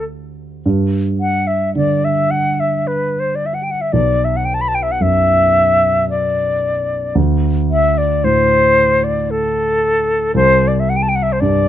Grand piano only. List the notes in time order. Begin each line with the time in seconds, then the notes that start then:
Already playing: D2 A3 E4 G4 C5
0.66 G2
1.75 D3
3.93 B1
5.00 F#2
7.15 D2
8.24 A2
10.34 C2
11.42 G2